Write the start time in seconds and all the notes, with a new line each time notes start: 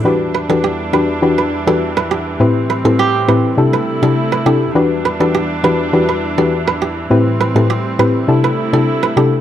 0.05 E2 E3 G3 D4 F#4 G4 B4
0.34 B4
0.49 E3 D4 F#4 G4 A4 B4
0.64 G4
0.93 E3 D4 F#4 G4 B4
1.22 E3 D4 F#4 G4 B4
1.38 B4
1.67 E3 D4 F#4 G4 A4 B4
1.97 B4
2.11 G4
2.40 A2 C4 E4 G4 B4
2.70 B4
2.84 A2 C4 E4 G4 A4 B4
2.99 G4
3.28 A2 C4 E4 G4 B4
3.57 C3 A3 D4 E4 G4 A4
3.73 B4
4.02 C3 D4 E4 G4 A4
4.32 B4
4.46 C3 D4 E4 G4 A4
4.75 E2 E3 D4 F#4 G4 B4
5.05 B4
5.20 E3 D4 F#4 G4 A4 B4
5.35 G4
5.63 E3 D4 F#4 G4 B4
5.93 E3 D4 F#4 G4 B4
6.09 B4
6.38 E3 D4 F#4 G4 A4 B4
6.68 B4
6.82 G4
7.10 A2 G3 C4 E4 G4 B4
7.41 B4
7.55 A2 C4 E4 G4 A4 B4
7.70 G4
7.99 A2 C4 E4 G4 B4
8.28 C3 A3 D4 E4 G4 A4
8.44 B4
8.73 C3 D4 E4 G4 A4
9.03 B4
9.16 C3 D4 E4 G4 A4